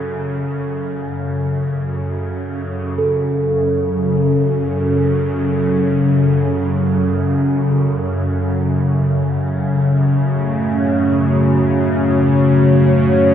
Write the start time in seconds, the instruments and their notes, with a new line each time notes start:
Already playing: synth drone F#2 C#3, singing bowl A4
2.96 synth drone F#2 C#3, singing bowl A4
10.31 analog synth pad A3
10.62 analog synth pad C#5
11.06 analog synth pad F#4
13.00 analog synth pad F#5